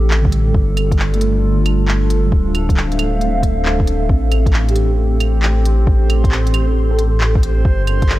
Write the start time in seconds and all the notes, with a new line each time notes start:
Already playing: A1 E3 C4 G4 A4
0.10 clap
0.22 D3, kick
0.27 G3
0.32 closed hi-hat
0.54 G1 G3 D4 F4, kick
0.77 closed hi-hat, claves
0.91 kick, closed hi-hat
0.99 clap
1.14 A3, closed hi-hat
1.21 closed hi-hat
1.66 closed hi-hat, claves
1.88 clap
2.10 closed hi-hat
2.26 G3
2.31 D1 C5 E5 F5, kick
2.55 closed hi-hat, claves
2.69 kick, closed hi-hat
2.77 clap
2.92 closed hi-hat
2.99 closed hi-hat, claves
3.20 A3, closed hi-hat
3.25 C4
3.29 D4
3.43 kick, closed hi-hat
3.65 clap
3.80 kick
3.87 closed hi-hat
4.09 A1 C4 G4 C5, kick
4.32 closed hi-hat, claves
4.46 kick, closed hi-hat
4.53 clap
4.69 G4, closed hi-hat
4.76 closed hi-hat
5.20 closed hi-hat, claves
5.42 clap
5.65 closed hi-hat
5.87 kick
6.10 closed hi-hat, claves
6.24 kick, closed hi-hat
6.32 clap
6.47 closed hi-hat
6.54 closed hi-hat, claves
6.91 A4
6.99 closed hi-hat
7.21 clap
7.35 kick
7.43 closed hi-hat
7.64 G1 F3 G3 D4 A4 A#4, kick
7.87 closed hi-hat, claves
8.02 kick, closed hi-hat
8.09 clap